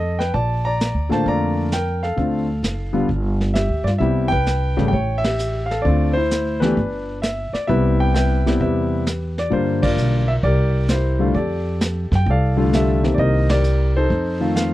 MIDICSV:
0, 0, Header, 1, 5, 480
1, 0, Start_track
1, 0, Key_signature, 0, "major"
1, 0, Tempo, 458365
1, 353, Time_signature, 4, 2, 24, 8
1, 15432, End_track
2, 0, Start_track
2, 0, Title_t, "Grand piano"
2, 0, Program_c, 0, 0
2, 0, Note_on_c, 0, 69, 51
2, 0, Note_on_c, 0, 75, 72
2, 178, Note_off_c, 0, 69, 0
2, 197, Note_on_c, 0, 79, 77
2, 202, Note_on_c, 0, 71, 59
2, 207, Note_off_c, 0, 75, 0
2, 340, Note_off_c, 0, 79, 0
2, 343, Note_off_c, 0, 71, 0
2, 354, Note_on_c, 0, 81, 82
2, 366, Note_on_c, 0, 74, 61
2, 664, Note_off_c, 0, 74, 0
2, 680, Note_on_c, 0, 82, 82
2, 690, Note_off_c, 0, 81, 0
2, 699, Note_on_c, 0, 74, 67
2, 1137, Note_off_c, 0, 74, 0
2, 1144, Note_on_c, 0, 50, 60
2, 1151, Note_on_c, 0, 58, 53
2, 1153, Note_on_c, 0, 65, 66
2, 1154, Note_on_c, 0, 57, 54
2, 1171, Note_on_c, 0, 81, 83
2, 1174, Note_off_c, 0, 82, 0
2, 1185, Note_on_c, 0, 72, 61
2, 1308, Note_off_c, 0, 81, 0
2, 1316, Note_off_c, 0, 72, 0
2, 1338, Note_on_c, 0, 82, 83
2, 1346, Note_on_c, 0, 74, 68
2, 1754, Note_off_c, 0, 50, 0
2, 1758, Note_off_c, 0, 58, 0
2, 1759, Note_off_c, 0, 57, 0
2, 1759, Note_off_c, 0, 65, 0
2, 1773, Note_off_c, 0, 82, 0
2, 1777, Note_off_c, 0, 74, 0
2, 1813, Note_on_c, 0, 79, 75
2, 1827, Note_on_c, 0, 70, 57
2, 2115, Note_off_c, 0, 70, 0
2, 2124, Note_on_c, 0, 77, 74
2, 2136, Note_on_c, 0, 69, 55
2, 2140, Note_off_c, 0, 79, 0
2, 2266, Note_on_c, 0, 50, 46
2, 2272, Note_on_c, 0, 57, 44
2, 2276, Note_on_c, 0, 60, 44
2, 2282, Note_on_c, 0, 65, 50
2, 2564, Note_off_c, 0, 50, 0
2, 2567, Note_off_c, 0, 57, 0
2, 2569, Note_off_c, 0, 60, 0
2, 2572, Note_off_c, 0, 65, 0
2, 3066, Note_on_c, 0, 50, 56
2, 3070, Note_on_c, 0, 59, 56
2, 3076, Note_on_c, 0, 55, 57
2, 3078, Note_on_c, 0, 65, 68
2, 3211, Note_off_c, 0, 50, 0
2, 3213, Note_off_c, 0, 59, 0
2, 3216, Note_off_c, 0, 55, 0
2, 3217, Note_off_c, 0, 65, 0
2, 3520, Note_off_c, 0, 77, 0
2, 3527, Note_off_c, 0, 69, 0
2, 3705, Note_on_c, 0, 76, 76
2, 3720, Note_on_c, 0, 67, 54
2, 4013, Note_off_c, 0, 76, 0
2, 4021, Note_off_c, 0, 67, 0
2, 4022, Note_on_c, 0, 74, 77
2, 4050, Note_on_c, 0, 65, 56
2, 4074, Note_off_c, 0, 74, 0
2, 4102, Note_off_c, 0, 65, 0
2, 4172, Note_on_c, 0, 76, 79
2, 4190, Note_on_c, 0, 48, 55
2, 4192, Note_on_c, 0, 55, 50
2, 4195, Note_on_c, 0, 59, 49
2, 4200, Note_on_c, 0, 64, 60
2, 4212, Note_on_c, 0, 67, 63
2, 4484, Note_on_c, 0, 79, 105
2, 4486, Note_off_c, 0, 48, 0
2, 4486, Note_off_c, 0, 76, 0
2, 4487, Note_off_c, 0, 55, 0
2, 4489, Note_off_c, 0, 59, 0
2, 4491, Note_off_c, 0, 64, 0
2, 4507, Note_off_c, 0, 67, 0
2, 4528, Note_on_c, 0, 71, 72
2, 4992, Note_on_c, 0, 49, 66
2, 4997, Note_on_c, 0, 55, 57
2, 4998, Note_on_c, 0, 67, 68
2, 4999, Note_on_c, 0, 57, 59
2, 5094, Note_off_c, 0, 79, 0
2, 5111, Note_on_c, 0, 79, 83
2, 5116, Note_off_c, 0, 71, 0
2, 5134, Note_off_c, 0, 49, 0
2, 5137, Note_off_c, 0, 55, 0
2, 5137, Note_off_c, 0, 67, 0
2, 5138, Note_off_c, 0, 57, 0
2, 5170, Note_on_c, 0, 73, 67
2, 5423, Note_on_c, 0, 76, 93
2, 5467, Note_off_c, 0, 73, 0
2, 5470, Note_off_c, 0, 79, 0
2, 5489, Note_on_c, 0, 67, 61
2, 5897, Note_off_c, 0, 76, 0
2, 5926, Note_on_c, 0, 77, 76
2, 5932, Note_off_c, 0, 67, 0
2, 5975, Note_on_c, 0, 69, 60
2, 6085, Note_off_c, 0, 77, 0
2, 6093, Note_on_c, 0, 74, 75
2, 6111, Note_off_c, 0, 69, 0
2, 6120, Note_on_c, 0, 50, 55
2, 6124, Note_on_c, 0, 57, 50
2, 6125, Note_on_c, 0, 60, 54
2, 6136, Note_on_c, 0, 65, 65
2, 6407, Note_off_c, 0, 74, 0
2, 6411, Note_off_c, 0, 50, 0
2, 6413, Note_off_c, 0, 57, 0
2, 6414, Note_off_c, 0, 60, 0
2, 6419, Note_off_c, 0, 65, 0
2, 6424, Note_on_c, 0, 72, 92
2, 6463, Note_on_c, 0, 64, 59
2, 6899, Note_off_c, 0, 64, 0
2, 6911, Note_on_c, 0, 71, 78
2, 6925, Note_on_c, 0, 52, 67
2, 6928, Note_off_c, 0, 72, 0
2, 6931, Note_on_c, 0, 57, 57
2, 6932, Note_on_c, 0, 59, 59
2, 6939, Note_on_c, 0, 67, 75
2, 6954, Note_on_c, 0, 62, 52
2, 7061, Note_off_c, 0, 52, 0
2, 7064, Note_off_c, 0, 57, 0
2, 7064, Note_off_c, 0, 59, 0
2, 7068, Note_off_c, 0, 67, 0
2, 7508, Note_off_c, 0, 71, 0
2, 7529, Note_off_c, 0, 62, 0
2, 7561, Note_on_c, 0, 76, 69
2, 7862, Note_off_c, 0, 76, 0
2, 7890, Note_on_c, 0, 74, 69
2, 8036, Note_on_c, 0, 76, 81
2, 8041, Note_on_c, 0, 48, 59
2, 8044, Note_off_c, 0, 74, 0
2, 8052, Note_on_c, 0, 55, 53
2, 8053, Note_on_c, 0, 59, 58
2, 8054, Note_on_c, 0, 64, 68
2, 8057, Note_on_c, 0, 71, 60
2, 8059, Note_on_c, 0, 67, 61
2, 8373, Note_off_c, 0, 76, 0
2, 8380, Note_on_c, 0, 79, 84
2, 8514, Note_off_c, 0, 79, 0
2, 8526, Note_off_c, 0, 71, 0
2, 8529, Note_on_c, 0, 79, 85
2, 8542, Note_on_c, 0, 71, 60
2, 8544, Note_on_c, 0, 76, 58
2, 8780, Note_off_c, 0, 48, 0
2, 8785, Note_off_c, 0, 55, 0
2, 8786, Note_off_c, 0, 59, 0
2, 8786, Note_off_c, 0, 64, 0
2, 8862, Note_on_c, 0, 48, 60
2, 8864, Note_on_c, 0, 55, 56
2, 8870, Note_on_c, 0, 59, 54
2, 8877, Note_on_c, 0, 64, 65
2, 8965, Note_off_c, 0, 67, 0
2, 8999, Note_off_c, 0, 76, 0
2, 9007, Note_off_c, 0, 71, 0
2, 9015, Note_on_c, 0, 76, 69
2, 9016, Note_off_c, 0, 79, 0
2, 9022, Note_on_c, 0, 71, 49
2, 9026, Note_on_c, 0, 67, 49
2, 9452, Note_off_c, 0, 76, 0
2, 9454, Note_off_c, 0, 48, 0
2, 9455, Note_off_c, 0, 55, 0
2, 9459, Note_off_c, 0, 59, 0
2, 9462, Note_off_c, 0, 64, 0
2, 9834, Note_on_c, 0, 74, 74
2, 9927, Note_off_c, 0, 71, 0
2, 9928, Note_off_c, 0, 67, 0
2, 9949, Note_on_c, 0, 50, 53
2, 9954, Note_on_c, 0, 55, 52
2, 9960, Note_on_c, 0, 58, 53
2, 9962, Note_off_c, 0, 74, 0
2, 9967, Note_on_c, 0, 65, 57
2, 9981, Note_on_c, 0, 72, 75
2, 10273, Note_off_c, 0, 72, 0
2, 10283, Note_off_c, 0, 65, 0
2, 10289, Note_on_c, 0, 74, 83
2, 10299, Note_on_c, 0, 65, 64
2, 10304, Note_on_c, 0, 70, 60
2, 10694, Note_off_c, 0, 50, 0
2, 10696, Note_off_c, 0, 55, 0
2, 10699, Note_off_c, 0, 58, 0
2, 10764, Note_on_c, 0, 76, 88
2, 10780, Note_off_c, 0, 74, 0
2, 10817, Note_off_c, 0, 76, 0
2, 10881, Note_off_c, 0, 65, 0
2, 10884, Note_off_c, 0, 70, 0
2, 10927, Note_on_c, 0, 74, 82
2, 10941, Note_on_c, 0, 67, 60
2, 10943, Note_on_c, 0, 70, 61
2, 11409, Note_on_c, 0, 72, 68
2, 11415, Note_off_c, 0, 74, 0
2, 11417, Note_off_c, 0, 67, 0
2, 11432, Note_on_c, 0, 64, 50
2, 11432, Note_on_c, 0, 67, 51
2, 11719, Note_on_c, 0, 50, 58
2, 11723, Note_on_c, 0, 55, 53
2, 11731, Note_on_c, 0, 57, 55
2, 11735, Note_on_c, 0, 65, 65
2, 11778, Note_off_c, 0, 72, 0
2, 11847, Note_off_c, 0, 70, 0
2, 11858, Note_off_c, 0, 50, 0
2, 11860, Note_off_c, 0, 55, 0
2, 11861, Note_off_c, 0, 64, 0
2, 11861, Note_off_c, 0, 67, 0
2, 11864, Note_off_c, 0, 57, 0
2, 11866, Note_off_c, 0, 65, 0
2, 11882, Note_on_c, 0, 74, 69
2, 11900, Note_on_c, 0, 67, 51
2, 11904, Note_on_c, 0, 69, 53
2, 12325, Note_off_c, 0, 74, 0
2, 12726, Note_on_c, 0, 79, 80
2, 12806, Note_off_c, 0, 67, 0
2, 12808, Note_off_c, 0, 69, 0
2, 12861, Note_off_c, 0, 79, 0
2, 12874, Note_on_c, 0, 69, 56
2, 12881, Note_on_c, 0, 74, 59
2, 12887, Note_on_c, 0, 77, 81
2, 13159, Note_on_c, 0, 50, 68
2, 13163, Note_on_c, 0, 55, 61
2, 13166, Note_on_c, 0, 57, 60
2, 13171, Note_on_c, 0, 65, 75
2, 13309, Note_off_c, 0, 77, 0
2, 13333, Note_off_c, 0, 69, 0
2, 13344, Note_on_c, 0, 67, 52
2, 13349, Note_on_c, 0, 69, 51
2, 13349, Note_on_c, 0, 76, 74
2, 13608, Note_off_c, 0, 50, 0
2, 13610, Note_off_c, 0, 55, 0
2, 13612, Note_off_c, 0, 57, 0
2, 13614, Note_off_c, 0, 65, 0
2, 13641, Note_on_c, 0, 51, 58
2, 13644, Note_off_c, 0, 67, 0
2, 13646, Note_on_c, 0, 58, 49
2, 13650, Note_on_c, 0, 60, 50
2, 13660, Note_on_c, 0, 67, 57
2, 13744, Note_off_c, 0, 76, 0
2, 13748, Note_off_c, 0, 74, 0
2, 13764, Note_on_c, 0, 74, 67
2, 13780, Note_off_c, 0, 69, 0
2, 13799, Note_off_c, 0, 74, 0
2, 13804, Note_off_c, 0, 67, 0
2, 13815, Note_on_c, 0, 75, 78
2, 13820, Note_on_c, 0, 67, 55
2, 13825, Note_on_c, 0, 70, 55
2, 14110, Note_off_c, 0, 75, 0
2, 14134, Note_off_c, 0, 67, 0
2, 14136, Note_on_c, 0, 74, 81
2, 14139, Note_off_c, 0, 70, 0
2, 14150, Note_on_c, 0, 67, 58
2, 14155, Note_on_c, 0, 70, 58
2, 14244, Note_off_c, 0, 51, 0
2, 14247, Note_off_c, 0, 58, 0
2, 14249, Note_off_c, 0, 60, 0
2, 14576, Note_off_c, 0, 74, 0
2, 14624, Note_on_c, 0, 72, 88
2, 14630, Note_on_c, 0, 69, 58
2, 14632, Note_on_c, 0, 63, 56
2, 14727, Note_off_c, 0, 67, 0
2, 14730, Note_off_c, 0, 70, 0
2, 15083, Note_on_c, 0, 57, 51
2, 15086, Note_on_c, 0, 51, 56
2, 15091, Note_on_c, 0, 60, 54
2, 15094, Note_on_c, 0, 65, 62
2, 15245, Note_on_c, 0, 77, 77
2, 15265, Note_off_c, 0, 72, 0
2, 15432, Note_off_c, 0, 51, 0
2, 15432, Note_off_c, 0, 57, 0
2, 15432, Note_off_c, 0, 60, 0
2, 15432, Note_off_c, 0, 63, 0
2, 15432, Note_off_c, 0, 65, 0
2, 15432, Note_off_c, 0, 69, 0
2, 15432, Note_off_c, 0, 77, 0
2, 15432, End_track
3, 0, Start_track
3, 0, Title_t, "Upright bass"
3, 0, Program_c, 1, 32
3, 0, Note_on_c, 1, 41, 71
3, 311, Note_off_c, 1, 41, 0
3, 354, Note_on_c, 1, 34, 72
3, 952, Note_off_c, 1, 34, 0
3, 985, Note_on_c, 1, 38, 49
3, 1137, Note_off_c, 1, 38, 0
3, 1146, Note_on_c, 1, 33, 58
3, 1298, Note_off_c, 1, 33, 0
3, 1316, Note_on_c, 1, 41, 67
3, 2233, Note_off_c, 1, 41, 0
3, 2276, Note_on_c, 1, 38, 73
3, 2721, Note_off_c, 1, 38, 0
3, 2750, Note_on_c, 1, 30, 64
3, 3198, Note_off_c, 1, 30, 0
3, 3235, Note_on_c, 1, 31, 71
3, 3832, Note_off_c, 1, 31, 0
3, 3862, Note_on_c, 1, 38, 53
3, 4010, Note_off_c, 1, 38, 0
3, 4016, Note_on_c, 1, 43, 62
3, 4173, Note_off_c, 1, 43, 0
3, 4192, Note_on_c, 1, 36, 74
3, 4958, Note_off_c, 1, 36, 0
3, 4998, Note_on_c, 1, 32, 62
3, 5142, Note_off_c, 1, 32, 0
3, 5157, Note_on_c, 1, 33, 69
3, 6074, Note_off_c, 1, 33, 0
3, 6125, Note_on_c, 1, 38, 72
3, 7038, Note_off_c, 1, 38, 0
3, 7089, Note_on_c, 1, 31, 72
3, 7847, Note_off_c, 1, 31, 0
3, 8054, Note_on_c, 1, 36, 75
3, 8963, Note_off_c, 1, 36, 0
3, 9012, Note_on_c, 1, 40, 72
3, 9921, Note_off_c, 1, 40, 0
3, 9965, Note_on_c, 1, 43, 74
3, 10407, Note_off_c, 1, 43, 0
3, 10436, Note_on_c, 1, 35, 67
3, 10882, Note_off_c, 1, 35, 0
3, 10923, Note_on_c, 1, 36, 76
3, 11837, Note_off_c, 1, 36, 0
3, 11879, Note_on_c, 1, 41, 75
3, 12642, Note_off_c, 1, 41, 0
3, 12686, Note_on_c, 1, 42, 67
3, 12827, Note_off_c, 1, 42, 0
3, 12840, Note_on_c, 1, 36, 79
3, 13756, Note_off_c, 1, 36, 0
3, 13803, Note_on_c, 1, 36, 80
3, 14717, Note_off_c, 1, 36, 0
3, 14768, Note_on_c, 1, 41, 70
3, 15432, Note_off_c, 1, 41, 0
3, 15432, End_track
4, 0, Start_track
4, 0, Title_t, "Muted upright bass strokes"
4, 7882, Note_on_c, 9, 29, 32
4, 7987, Note_off_c, 9, 29, 0
4, 15432, End_track
5, 0, Start_track
5, 0, Title_t, "Drums"
5, 211, Note_on_c, 9, 38, 32
5, 316, Note_off_c, 9, 38, 0
5, 359, Note_on_c, 9, 36, 30
5, 364, Note_on_c, 9, 25, 38
5, 464, Note_off_c, 9, 36, 0
5, 844, Note_on_c, 9, 44, 46
5, 848, Note_on_c, 9, 38, 46
5, 949, Note_off_c, 9, 44, 0
5, 953, Note_off_c, 9, 38, 0
5, 1170, Note_on_c, 9, 38, 29
5, 1275, Note_off_c, 9, 38, 0
5, 1320, Note_on_c, 9, 36, 29
5, 1330, Note_off_c, 9, 25, 0
5, 1330, Note_on_c, 9, 25, 38
5, 1425, Note_off_c, 9, 36, 0
5, 1798, Note_on_c, 9, 44, 46
5, 1803, Note_on_c, 9, 38, 50
5, 1903, Note_off_c, 9, 44, 0
5, 1907, Note_off_c, 9, 38, 0
5, 2131, Note_on_c, 9, 38, 32
5, 2236, Note_off_c, 9, 38, 0
5, 2280, Note_on_c, 9, 36, 29
5, 2287, Note_off_c, 9, 25, 0
5, 2287, Note_on_c, 9, 25, 39
5, 2384, Note_off_c, 9, 36, 0
5, 2761, Note_on_c, 9, 44, 55
5, 2765, Note_on_c, 9, 38, 48
5, 2866, Note_off_c, 9, 44, 0
5, 2870, Note_off_c, 9, 38, 0
5, 3237, Note_on_c, 9, 36, 29
5, 3244, Note_off_c, 9, 25, 0
5, 3244, Note_on_c, 9, 25, 41
5, 3342, Note_off_c, 9, 36, 0
5, 3567, Note_on_c, 9, 38, 32
5, 3672, Note_off_c, 9, 38, 0
5, 3718, Note_on_c, 9, 44, 57
5, 3722, Note_on_c, 9, 38, 50
5, 3823, Note_off_c, 9, 44, 0
5, 3827, Note_off_c, 9, 38, 0
5, 4051, Note_on_c, 9, 38, 31
5, 4156, Note_off_c, 9, 38, 0
5, 4199, Note_on_c, 9, 36, 29
5, 4207, Note_off_c, 9, 25, 0
5, 4207, Note_on_c, 9, 25, 39
5, 4304, Note_off_c, 9, 36, 0
5, 4525, Note_on_c, 9, 36, 50
5, 4630, Note_off_c, 9, 36, 0
5, 4674, Note_on_c, 9, 44, 51
5, 4679, Note_on_c, 9, 38, 46
5, 4779, Note_off_c, 9, 44, 0
5, 4783, Note_off_c, 9, 38, 0
5, 5013, Note_on_c, 9, 38, 31
5, 5118, Note_off_c, 9, 38, 0
5, 5163, Note_on_c, 9, 36, 30
5, 5167, Note_off_c, 9, 25, 0
5, 5167, Note_on_c, 9, 25, 43
5, 5267, Note_off_c, 9, 36, 0
5, 5487, Note_on_c, 9, 51, 56
5, 5491, Note_on_c, 9, 38, 64
5, 5592, Note_off_c, 9, 51, 0
5, 5596, Note_off_c, 9, 38, 0
5, 5643, Note_on_c, 9, 44, 50
5, 5748, Note_off_c, 9, 44, 0
5, 5980, Note_on_c, 9, 38, 34
5, 6085, Note_off_c, 9, 38, 0
5, 6127, Note_off_c, 9, 25, 0
5, 6127, Note_on_c, 9, 25, 48
5, 6127, Note_on_c, 9, 36, 30
5, 6232, Note_off_c, 9, 36, 0
5, 6607, Note_on_c, 9, 44, 55
5, 6611, Note_on_c, 9, 38, 49
5, 6712, Note_off_c, 9, 44, 0
5, 6716, Note_off_c, 9, 38, 0
5, 6932, Note_on_c, 9, 38, 32
5, 7037, Note_off_c, 9, 38, 0
5, 7090, Note_off_c, 9, 25, 0
5, 7090, Note_on_c, 9, 25, 38
5, 7091, Note_on_c, 9, 36, 29
5, 7196, Note_off_c, 9, 36, 0
5, 7570, Note_on_c, 9, 44, 45
5, 7575, Note_on_c, 9, 38, 53
5, 7675, Note_off_c, 9, 44, 0
5, 7679, Note_off_c, 9, 38, 0
5, 7899, Note_on_c, 9, 38, 32
5, 8003, Note_off_c, 9, 38, 0
5, 8055, Note_on_c, 9, 36, 29
5, 8061, Note_off_c, 9, 25, 0
5, 8061, Note_on_c, 9, 25, 42
5, 8160, Note_off_c, 9, 36, 0
5, 8536, Note_on_c, 9, 44, 52
5, 8540, Note_on_c, 9, 38, 49
5, 8641, Note_off_c, 9, 44, 0
5, 8645, Note_off_c, 9, 38, 0
5, 8869, Note_on_c, 9, 38, 36
5, 8974, Note_off_c, 9, 38, 0
5, 9014, Note_on_c, 9, 36, 30
5, 9023, Note_off_c, 9, 25, 0
5, 9023, Note_on_c, 9, 25, 40
5, 9119, Note_off_c, 9, 36, 0
5, 9492, Note_on_c, 9, 44, 55
5, 9496, Note_on_c, 9, 38, 53
5, 9596, Note_off_c, 9, 44, 0
5, 9601, Note_off_c, 9, 38, 0
5, 9822, Note_on_c, 9, 38, 36
5, 9927, Note_off_c, 9, 38, 0
5, 9968, Note_on_c, 9, 36, 29
5, 9972, Note_off_c, 9, 25, 0
5, 9972, Note_on_c, 9, 25, 46
5, 10072, Note_off_c, 9, 36, 0
5, 10292, Note_on_c, 9, 51, 65
5, 10295, Note_on_c, 9, 36, 67
5, 10397, Note_off_c, 9, 51, 0
5, 10400, Note_off_c, 9, 36, 0
5, 10446, Note_on_c, 9, 44, 44
5, 10550, Note_off_c, 9, 44, 0
5, 10924, Note_on_c, 9, 36, 32
5, 10928, Note_off_c, 9, 25, 0
5, 10928, Note_on_c, 9, 25, 41
5, 11028, Note_off_c, 9, 36, 0
5, 11398, Note_on_c, 9, 44, 51
5, 11402, Note_on_c, 9, 38, 55
5, 11503, Note_off_c, 9, 44, 0
5, 11507, Note_off_c, 9, 38, 0
5, 11882, Note_on_c, 9, 36, 31
5, 11888, Note_off_c, 9, 25, 0
5, 11888, Note_on_c, 9, 25, 41
5, 11986, Note_off_c, 9, 36, 0
5, 12365, Note_on_c, 9, 44, 55
5, 12369, Note_on_c, 9, 38, 54
5, 12470, Note_off_c, 9, 44, 0
5, 12474, Note_off_c, 9, 38, 0
5, 12690, Note_on_c, 9, 36, 41
5, 12696, Note_on_c, 9, 38, 34
5, 12795, Note_off_c, 9, 36, 0
5, 12801, Note_off_c, 9, 38, 0
5, 12844, Note_on_c, 9, 36, 30
5, 12846, Note_off_c, 9, 25, 0
5, 12846, Note_on_c, 9, 25, 46
5, 12949, Note_off_c, 9, 36, 0
5, 13331, Note_on_c, 9, 44, 58
5, 13335, Note_on_c, 9, 38, 54
5, 13436, Note_off_c, 9, 44, 0
5, 13440, Note_off_c, 9, 38, 0
5, 13657, Note_on_c, 9, 38, 34
5, 13762, Note_off_c, 9, 38, 0
5, 13804, Note_on_c, 9, 36, 30
5, 13806, Note_off_c, 9, 25, 0
5, 13806, Note_on_c, 9, 25, 43
5, 13909, Note_off_c, 9, 36, 0
5, 14127, Note_on_c, 9, 51, 54
5, 14132, Note_on_c, 9, 38, 68
5, 14232, Note_off_c, 9, 51, 0
5, 14236, Note_off_c, 9, 38, 0
5, 14279, Note_on_c, 9, 44, 44
5, 14384, Note_off_c, 9, 44, 0
5, 14768, Note_on_c, 9, 36, 31
5, 14776, Note_off_c, 9, 25, 0
5, 14776, Note_on_c, 9, 25, 47
5, 14873, Note_off_c, 9, 36, 0
5, 15250, Note_on_c, 9, 44, 58
5, 15254, Note_on_c, 9, 38, 57
5, 15355, Note_off_c, 9, 44, 0
5, 15359, Note_off_c, 9, 38, 0
5, 15432, Note_off_c, 9, 25, 0
5, 15432, End_track
0, 0, End_of_file